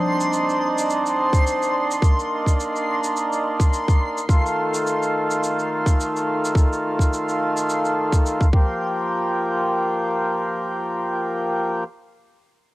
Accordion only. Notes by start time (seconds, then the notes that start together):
Already playing: C4 D4 D#4
2.01 A#3
4.28 D#3 A3 F4
8.54 F3 A#3 G4